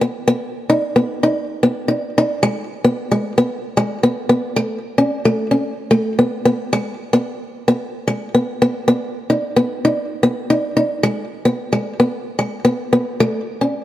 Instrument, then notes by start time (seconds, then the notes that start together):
steel-string acoustic guitar
0.01 B3
0.28 B3
0.70 D#4
0.96 B3
1.23 D#4
1.63 B3
1.88 D#4
2.18 D#4
2.43 G#3
2.84 B3
3.12 G#3
3.38 B3
3.77 G#3
4.03 B3
4.29 B3
4.56 A3
4.98 C#4
5.25 A3
5.51 C#4
5.91 A3
6.19 B3
6.45 B3
6.73 G#3
7.13 B3
7.68 B3
8.08 G#3
8.35 B3
8.62 B3
8.88 B3
9.30 D#4
9.56 B3
9.85 D#4
10.23 B3
10.50 D#4
10.77 D#4
11.03 G#3
11.45 B3
11.73 G#3
12.00 B3
12.39 G#3
12.65 B3
12.93 B3
13.20 A3
13.61 C#4